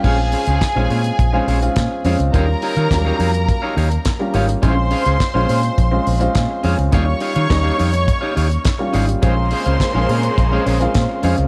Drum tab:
CC |x---------------|----------------|----------------|----------------|
HH |--oxx-oxx-oxx-ox|x-oxx-oxx-oxx-ox|x-oxx-oxx-oxx-ox|x-oxx-oxx-oxx-ox|
SD |----o-------o---|----o-------o---|----o-------o---|----o-------o---|
BD |o---o---o---o---|o---o---o---o---|o---o---o---o---|o---o---o---o---|

CC |----------------|
HH |x-oxx-oxx-oxx-ox|
SD |----o-------o---|
BD |o---o---o---o---|